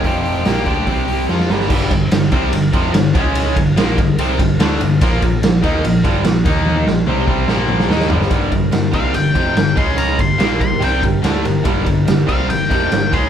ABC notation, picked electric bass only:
X:1
M:4/4
L:1/8
Q:1/4=145
K:Gm
V:1 name="Picked electric bass" clef=bass
F,,,2 B,,, D,, C,,2 F,, G,,, | G,,, G,,, G,,, C,, G,,, F,,, G,,, ^C,,- | ^C,, G,,, B,,, G,,, =C,, G,,, D,, G,,, | B,,, B,,, B,,, E,, B,,, G,,, B,,, E,,- |
E,, B,,, C,, C,, B,,,2 E,, G,,, | G,,, G,,, G,,, C,, G,,, F,,, G,,, ^C,,- | ^C,, G,,, B,,, G,,, =C,, G,,, D,, G,,, | G,,, G,,, G,,, C,, G,,, F,,, G,,, ^C,, |]